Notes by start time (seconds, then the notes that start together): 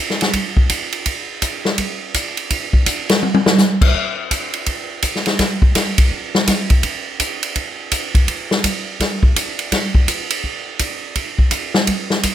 0.10 snare
0.21 snare, ride
0.33 kick, ride
0.57 kick
0.69 kick, hi-hat pedal, ride
0.92 ride
1.06 kick, ride
1.42 kick, hi-hat pedal, ride
1.65 snare
1.78 kick, ride
2.14 kick, hi-hat pedal, ride
2.37 ride
2.50 kick, ride
2.73 kick
2.86 kick, hi-hat pedal, ride
3.09 snare, ride
3.23 high tom
3.34 high tom
3.46 snare
3.58 snare, hi-hat pedal
3.81 kick, crash
3.95 kick
4.31 kick, hi-hat pedal, ride
4.53 ride
4.66 kick, ride
5.02 kick, hi-hat pedal, ride
5.16 snare
5.26 snare, ride
5.39 kick, snare, ride
5.62 kick
5.75 kick, snare, hi-hat pedal, ride
5.98 kick, ride
6.11 kick
6.35 snare
6.47 kick, snare, hi-hat pedal, ride
6.70 kick, ride
6.83 kick, ride
7.20 kick, hi-hat pedal, ride
7.43 ride
7.56 kick, ride
7.91 kick, hi-hat pedal, ride
8.15 kick, ride
8.28 kick, ride
8.51 snare
8.64 kick, hi-hat pedal, ride
9.00 kick, snare, ride
9.23 kick
9.36 kick, hi-hat pedal, ride
9.59 ride
9.72 kick, snare, ride
9.95 kick
10.08 kick, hi-hat pedal, ride
10.30 ride
10.44 kick
10.79 kick, hi-hat pedal, ride
11.15 kick, ride
11.38 kick
11.51 kick, hi-hat pedal, ride
11.74 snare
11.87 kick, ride
12.10 snare
12.23 kick, hi-hat pedal, ride